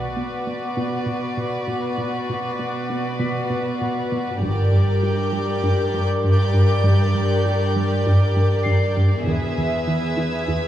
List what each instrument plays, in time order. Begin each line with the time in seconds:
Already playing: double bass section B1, cello section B2, violin section F#4 B4 D5
0.17 analog synth bass B3
0.47 analog synth bass B3
0.77 analog synth bass B2
1.06 analog synth bass B2
1.37 analog synth bass B2
1.68 analog synth bass B2
1.98 analog synth bass B2
2.29 analog synth bass B2
2.59 analog synth bass B3
2.90 analog synth bass B3
3.19 analog synth bass B2, celesta B6
3.50 analog synth bass B2
3.81 analog synth bass B2
4.12 analog synth bass B2
4.42 double bass section G1, cello section G2, analog synth bass G2, violin section G4 A#4 D5 D6
4.72 analog synth bass G2
5.03 analog synth bass G3, violin section G6
5.32 analog synth bass G3
5.63 analog synth bass G2
5.94 analog synth bass G2
6.24 analog synth bass G2
6.54 analog synth bass G2
6.84 analog synth bass G2
7.15 analog synth bass G2
7.46 analog synth bass G3
7.76 analog synth bass G3
8.07 analog synth bass G2
8.36 analog synth bass G2
8.64 analog synth bass G2, celesta C7
8.97 analog synth bass G2
9.26 double bass section E1, analog synth bass E2, cello section E2, violin section G#4 B4 E5 E6 G#6
9.58 analog synth bass E2
9.87 analog synth bass E3
10.17 analog synth bass E3
10.48 analog synth bass E2